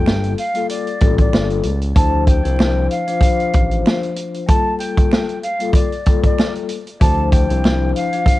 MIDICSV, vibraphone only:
0, 0, Header, 1, 2, 480
1, 0, Start_track
1, 0, Key_signature, -1, "minor"
1, 0, Tempo, 631579
1, 1489, Time_signature, 4, 2, 24, 8
1, 6380, End_track
2, 0, Start_track
2, 0, Title_t, "Vibraphone"
2, 0, Program_c, 0, 11
2, 0, Note_on_c, 0, 55, 95
2, 0, Note_on_c, 0, 58, 90
2, 0, Note_on_c, 0, 65, 82
2, 0, Note_on_c, 0, 69, 109
2, 231, Note_off_c, 0, 55, 0
2, 234, Note_off_c, 0, 58, 0
2, 238, Note_off_c, 0, 65, 0
2, 241, Note_off_c, 0, 69, 0
2, 409, Note_on_c, 0, 55, 81
2, 415, Note_on_c, 0, 58, 88
2, 422, Note_on_c, 0, 65, 86
2, 428, Note_on_c, 0, 69, 106
2, 634, Note_off_c, 0, 55, 0
2, 637, Note_off_c, 0, 58, 0
2, 641, Note_off_c, 0, 65, 0
2, 644, Note_off_c, 0, 69, 0
2, 764, Note_on_c, 0, 55, 103
2, 771, Note_on_c, 0, 58, 87
2, 778, Note_on_c, 0, 65, 91
2, 785, Note_on_c, 0, 69, 118
2, 1212, Note_off_c, 0, 55, 0
2, 1216, Note_off_c, 0, 58, 0
2, 1219, Note_off_c, 0, 65, 0
2, 1223, Note_off_c, 0, 69, 0
2, 1479, Note_on_c, 0, 53, 99
2, 1486, Note_on_c, 0, 62, 87
2, 1493, Note_on_c, 0, 64, 86
2, 1499, Note_on_c, 0, 72, 109
2, 1826, Note_off_c, 0, 53, 0
2, 1829, Note_off_c, 0, 62, 0
2, 1833, Note_off_c, 0, 64, 0
2, 1836, Note_off_c, 0, 72, 0
2, 1848, Note_on_c, 0, 53, 94
2, 1855, Note_on_c, 0, 62, 86
2, 1862, Note_on_c, 0, 64, 89
2, 1869, Note_on_c, 0, 72, 102
2, 2293, Note_off_c, 0, 53, 0
2, 2296, Note_off_c, 0, 62, 0
2, 2300, Note_off_c, 0, 64, 0
2, 2303, Note_off_c, 0, 72, 0
2, 2333, Note_on_c, 0, 53, 94
2, 2340, Note_on_c, 0, 62, 85
2, 2346, Note_on_c, 0, 65, 78
2, 2353, Note_on_c, 0, 72, 105
2, 3328, Note_off_c, 0, 53, 0
2, 3331, Note_off_c, 0, 62, 0
2, 3334, Note_off_c, 0, 65, 0
2, 3338, Note_off_c, 0, 72, 0
2, 3395, Note_on_c, 0, 55, 90
2, 3401, Note_on_c, 0, 58, 91
2, 3407, Note_on_c, 0, 65, 86
2, 3414, Note_on_c, 0, 69, 103
2, 4071, Note_off_c, 0, 55, 0
2, 4074, Note_off_c, 0, 58, 0
2, 4077, Note_off_c, 0, 65, 0
2, 4081, Note_off_c, 0, 69, 0
2, 4249, Note_on_c, 0, 55, 82
2, 4257, Note_on_c, 0, 58, 84
2, 4263, Note_on_c, 0, 65, 87
2, 4269, Note_on_c, 0, 69, 100
2, 4474, Note_off_c, 0, 55, 0
2, 4478, Note_off_c, 0, 58, 0
2, 4481, Note_off_c, 0, 65, 0
2, 4485, Note_off_c, 0, 69, 0
2, 4606, Note_on_c, 0, 55, 100
2, 4613, Note_on_c, 0, 58, 88
2, 4619, Note_on_c, 0, 65, 92
2, 4626, Note_on_c, 0, 69, 115
2, 5053, Note_off_c, 0, 55, 0
2, 5057, Note_off_c, 0, 58, 0
2, 5060, Note_off_c, 0, 65, 0
2, 5063, Note_off_c, 0, 69, 0
2, 5318, Note_on_c, 0, 53, 99
2, 5325, Note_on_c, 0, 62, 89
2, 5332, Note_on_c, 0, 64, 83
2, 5339, Note_on_c, 0, 72, 109
2, 5665, Note_off_c, 0, 53, 0
2, 5669, Note_off_c, 0, 62, 0
2, 5672, Note_off_c, 0, 64, 0
2, 5676, Note_off_c, 0, 72, 0
2, 5689, Note_on_c, 0, 53, 93
2, 5696, Note_on_c, 0, 62, 86
2, 5702, Note_on_c, 0, 64, 91
2, 5709, Note_on_c, 0, 72, 103
2, 6133, Note_off_c, 0, 53, 0
2, 6136, Note_off_c, 0, 62, 0
2, 6139, Note_off_c, 0, 64, 0
2, 6143, Note_off_c, 0, 72, 0
2, 6174, Note_on_c, 0, 53, 91
2, 6181, Note_on_c, 0, 62, 85
2, 6187, Note_on_c, 0, 65, 78
2, 6194, Note_on_c, 0, 72, 106
2, 6380, Note_off_c, 0, 53, 0
2, 6380, Note_off_c, 0, 62, 0
2, 6380, Note_off_c, 0, 65, 0
2, 6380, Note_off_c, 0, 72, 0
2, 6380, End_track
0, 0, End_of_file